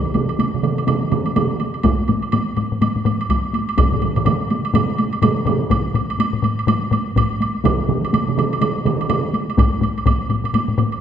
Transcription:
0.05 taiko high soft
0.14 taiko mid medium
0.14 taiko high medium
0.14 high woodblock soft
0.29 taiko high soft
0.29 high woodblock soft
0.39 taiko mid medium
0.39 taiko high medium
0.39 high woodblock soft
0.53 taiko mid medium
0.53 taiko high soft
0.63 taiko mid medium
0.63 high woodblock soft
0.78 high woodblock soft
0.87 taiko mid medium
0.87 taiko high medium
0.87 high woodblock soft
1.02 taiko high soft
1.11 taiko mid medium
1.11 taiko high soft
1.11 high woodblock soft
1.26 taiko high soft
1.26 high woodblock soft
1.36 taiko mid medium
1.36 taiko high medium
1.36 high woodblock soft
1.51 taiko high soft
1.60 taiko high medium
1.60 high woodblock soft
1.74 high woodblock soft
1.83 taiko loud
1.83 taiko low-mid medium
1.83 taiko high medium
1.83 high woodblock soft
1.99 taiko high soft
2.08 taiko low-mid medium
2.08 taiko high soft
2.08 high woodblock soft
2.22 taiko high soft
2.22 high woodblock soft
2.32 taiko low-mid medium
2.32 taiko high medium
2.32 high woodblock soft
2.47 taiko high soft
2.57 taiko low-mid medium
2.57 taiko high medium
2.57 high woodblock soft
2.72 taiko low-mid medium
2.81 taiko low-mid medium
2.81 taiko high medium
2.81 high woodblock soft
2.96 taiko low-mid medium
2.96 taiko high soft
3.05 taiko low-mid medium
3.05 taiko high medium
3.05 high woodblock soft
3.21 taiko high soft
3.21 high woodblock soft
3.29 taiko medium
3.29 taiko high medium
3.29 high woodblock medium
3.44 taiko high soft
3.53 taiko high medium
3.53 high woodblock soft
3.68 taiko high soft
3.68 high woodblock soft
3.78 taiko medium
3.78 taiko low-mid medium
3.78 taiko mid medium
3.78 taiko high medium
3.78 high woodblock medium
3.92 taiko low-mid medium
3.92 taiko mid medium
3.92 taiko high soft
4.02 taiko low-mid medium
4.02 taiko mid medium
4.02 taiko high medium
4.02 high woodblock soft
4.16 taiko low-mid medium
4.16 taiko mid medium
4.16 taiko high soft
4.16 high woodblock soft
4.25 taiko low-mid medium
4.25 taiko mid medium
4.25 taiko high medium
4.25 high woodblock medium
4.41 taiko high soft
4.50 taiko high medium
4.50 high woodblock soft
4.65 high woodblock soft
4.74 taiko low-mid medium
4.74 taiko mid loud
4.74 taiko high medium
4.74 high woodblock medium
4.90 taiko high soft
4.98 taiko high medium
4.98 high woodblock soft
5.13 taiko high soft
5.13 high woodblock soft
5.22 taiko low-mid medium
5.22 taiko mid loud
5.22 taiko high medium
5.22 high woodblock medium
5.38 taiko high soft
5.46 taiko low-mid medium
5.46 taiko mid loud
5.46 taiko high soft
5.46 high woodblock soft
5.62 taiko high soft
5.70 taiko medium
5.70 taiko low-mid medium
5.70 taiko high medium
5.70 high woodblock medium
5.86 taiko high soft
5.94 taiko low-mid medium
5.94 taiko high soft
5.94 high woodblock soft
6.10 taiko high soft
6.10 high woodblock soft
6.19 taiko low-mid medium
6.19 taiko high medium
6.19 high woodblock medium
6.33 taiko low-mid medium
6.33 taiko high soft
6.42 taiko low-mid medium
6.42 taiko high soft
6.42 high woodblock soft
6.59 high woodblock soft
6.67 taiko low-mid loud
6.67 taiko high medium
6.67 high woodblock medium
6.83 taiko high soft
6.91 taiko low-mid medium
6.91 taiko high soft
6.91 high woodblock soft
7.07 taiko high soft
7.16 taiko medium
7.16 taiko low-mid loud
7.16 taiko high medium
7.16 high woodblock medium
7.31 taiko high soft
7.41 taiko high medium
7.41 high woodblock medium
7.55 taiko high soft
7.64 taiko medium
7.64 taiko mid loud
7.64 taiko high medium
7.64 high woodblock medium
7.79 taiko high soft
7.89 taiko mid medium
7.89 taiko high soft
8.03 taiko high soft
8.03 high woodblock soft
8.13 taiko mid medium
8.13 taiko high medium
8.13 high woodblock medium
8.28 taiko mid medium
8.28 taiko high soft
8.38 taiko mid medium
8.38 taiko high soft
8.38 high woodblock soft
8.53 high woodblock soft
8.61 taiko mid medium
8.61 taiko high medium
8.61 high woodblock medium
8.76 taiko high soft
8.85 taiko mid loud
8.85 taiko high soft
8.85 high woodblock soft
9.00 taiko high soft
9.00 high woodblock soft
9.09 taiko mid loud
9.09 taiko high medium
9.09 high woodblock medium
9.24 taiko high soft
9.33 taiko high soft
9.33 high woodblock soft
9.49 taiko high soft
9.49 high woodblock soft
9.57 taiko loud
9.57 taiko low-mid medium
9.57 taiko high medium
9.57 high woodblock medium
9.72 taiko high soft
9.81 taiko low-mid medium
9.81 taiko high soft
9.81 high woodblock soft
9.97 taiko high soft
9.97 high woodblock soft
10.06 taiko medium
10.06 taiko low-mid medium
10.06 taiko high medium
10.06 high woodblock medium
10.22 taiko high soft
10.29 taiko low-mid medium
10.29 taiko high soft
10.29 high woodblock soft
10.44 taiko low-mid medium
10.44 high woodblock soft
10.54 taiko low-mid medium
10.54 taiko high medium
10.54 high woodblock medium
10.68 taiko low-mid medium
10.68 taiko high soft
10.78 taiko low-mid loud
10.78 taiko high soft
10.78 high woodblock soft
10.92 taiko high soft
10.92 high woodblock soft

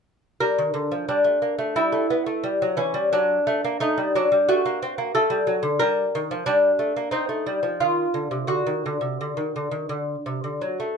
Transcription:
0.40 0.58 G3 medium
0.40 1.07 A#4 medium
0.58 0.73 D#3 medium
0.74 0.91 D3 medium
0.92 1.08 F3 medium
1.09 1.25 G3 medium
1.09 1.75 D4 medium
1.24 1.42 A3 medium
1.42 1.58 A#3 medium
1.58 1.76 A3 medium
1.76 1.93 G3 medium
1.76 2.74 E4 medium
1.92 2.10 A3 medium
2.10 2.26 B3 medium
2.26 2.44 A3 medium
2.44 2.61 G3 medium
2.62 2.78 F#3 medium
2.77 2.94 E3 medium
2.77 3.11 C#4 medium
2.94 3.11 G3 medium
3.13 3.38 F#3 medium
3.13 3.79 D4 medium
3.47 3.64 A3 medium
3.65 3.80 A#3 medium
3.80 3.97 A3 medium
3.80 4.14 D#4 medium
3.98 4.14 G3 medium
4.15 4.31 F#3 medium
4.15 4.48 D4 medium
4.32 4.48 G3 medium
4.49 4.65 A3 medium
4.49 5.11 F#4 medium
4.66 4.81 A#3 medium
4.82 4.97 C4 medium
4.98 5.13 A#3 medium
5.15 5.30 A3 medium
5.15 5.77 A4 loud
5.30 5.45 G3 medium
5.47 5.62 F#3 medium
5.63 5.78 D3 medium
5.79 6.04 G3 medium
5.79 6.43 A#4 loud
6.15 6.29 D#3 medium
6.31 6.45 F3 medium
6.46 6.70 G3 medium
6.46 7.09 D4 medium
6.79 6.94 A3 medium
6.96 7.11 A#3 medium
7.11 7.28 C4 medium
7.11 7.76 D#4 medium
7.29 7.44 A3 medium
7.46 7.62 G3 medium
7.63 7.78 F3 medium
7.80 8.05 D#3 medium
7.80 8.46 F4 medium
8.14 8.30 D3 medium
8.31 8.47 C3 medium
8.47 8.64 D3 medium
8.47 10.91 F#4 medium
8.67 8.83 D#3 medium
8.86 9.01 D3 medium
9.01 9.18 C3 medium
9.21 9.36 D3 medium
9.37 9.53 D#3 medium
9.56 9.71 D3 medium
9.71 9.88 D#3 medium
9.89 10.15 D3 medium
10.26 10.42 C3 medium
10.44 10.60 D3 medium
10.61 10.77 F#3 medium
10.80 10.95 A3 medium

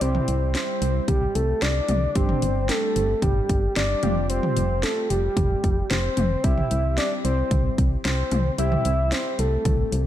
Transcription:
0.00 0.20 C2 loud
0.00 2.12 G3 medium
0.00 2.12 C4 medium
0.00 2.12 E4 medium
0.00 2.12 G4 medium
0.00 0.54 C5 loud
0.00 closed hi-hat medium
0.00 downlifter medium
0.15 mid tom medium
0.28 0.56 C2 medium
0.28 closed hi-hat medium
0.55 1.05 C5 medium
0.55 snare medium
0.55 closed hi-hat medium
0.82 1.00 C2 loud
0.82 closed hi-hat medium
1.08 1.27 C2 loud
1.08 1.37 G4 medium
1.08 kick loud
1.08 closed hi-hat medium
1.08 mid tom medium
1.35 1.54 C2 loud
1.35 1.63 A4 medium
1.35 closed hi-hat medium
1.62 1.81 C2 loud
1.62 2.17 D5 loud
1.62 snare loud
1.62 closed hi-hat medium
1.89 2.08 C2 loud
1.89 closed hi-hat medium
1.89 mid tom loud
2.15 2.34 G1 loud
2.15 3.99 G3 medium
2.15 4.00 C4 medium
2.15 4.00 D4 medium
2.15 4.00 G4 medium
2.15 2.70 C5 medium
2.15 kick loud
2.15 closed hi-hat medium
2.29 mid tom medium
2.42 2.71 G1 loud
2.42 closed hi-hat medium
2.69 3.22 A4 loud
2.69 snare medium
2.69 closed hi-hat medium
2.96 3.15 G1 medium
2.96 closed hi-hat medium
3.22 3.41 G1 loud
3.22 3.72 G4 loud
3.22 kick loud
3.22 closed hi-hat medium
3.22 mid tom medium
3.49 3.68 G1 medium
3.49 kick medium
3.49 closed hi-hat medium
3.76 3.95 G1 medium
3.76 4.26 D5 loud
3.76 snare loud
3.76 closed hi-hat medium
4.03 4.41 F1 loud
4.03 6.13 G3 medium
4.03 6.13 C4 medium
4.03 6.14 F4 medium
4.03 6.13 G4 medium
4.03 closed hi-hat medium
4.03 mid tom loud
4.30 4.84 C5 loud
4.30 closed hi-hat medium
4.43 mid tom medium
4.57 4.85 F1 loud
4.57 closed hi-hat medium
4.83 5.09 A4 medium
4.83 snare medium
4.83 closed hi-hat medium
5.10 5.29 F1 medium
5.10 5.86 G4 loud
5.10 closed hi-hat medium
5.37 5.56 F1 loud
5.37 kick loud
5.37 closed hi-hat medium
5.37 mid tom loud
5.64 5.83 F1 loud
5.64 kick medium
5.64 closed hi-hat medium
5.91 6.09 F1 loud
5.91 6.45 C5 loud
5.91 snare loud
5.91 closed hi-hat medium
6.17 6.36 F1 loud
6.17 closed hi-hat medium
6.17 mid tom loud
6.44 6.63 C2 loud
6.44 8.55 G3 medium
6.44 8.55 C4 medium
6.44 8.55 E4 medium
6.44 8.55 G4 medium
6.44 6.97 E5 loud
6.44 kick loud
6.44 closed hi-hat medium
6.58 mid tom medium
6.71 6.99 C2 loud
6.71 closed hi-hat medium
6.98 7.10 D5 loud
6.98 snare loud
6.98 closed hi-hat medium
7.25 7.43 C2 medium
7.25 7.74 C5 loud
7.25 closed hi-hat medium
7.51 7.70 C2 loud
7.51 kick loud
7.51 closed hi-hat medium
7.51 mid tom medium
7.78 7.97 C2 loud
7.78 kick medium
7.78 closed hi-hat medium
8.05 8.24 C2 loud
8.05 8.55 C5 loud
8.05 snare loud
8.05 closed hi-hat medium
8.32 8.50 C2 loud
8.32 closed hi-hat medium
8.32 mid tom loud
8.58 8.77 C2 loud
8.58 10.07 G3 medium
8.58 10.07 C4 medium
8.58 10.07 E4 medium
8.58 10.07 G4 medium
8.58 9.14 E5 loud
8.58 closed hi-hat medium
8.72 mid tom medium
8.85 9.13 C2 medium
8.85 closed hi-hat medium
9.12 9.41 C5 loud
9.12 snare medium
9.12 closed hi-hat medium
9.39 9.58 C2 medium
9.39 9.93 A4 medium
9.39 closed hi-hat medium
9.65 9.84 C2 loud
9.65 kick loud
9.65 closed hi-hat medium
9.65 mid tom loud
9.92 10.07 C2 loud
9.92 closed hi-hat medium

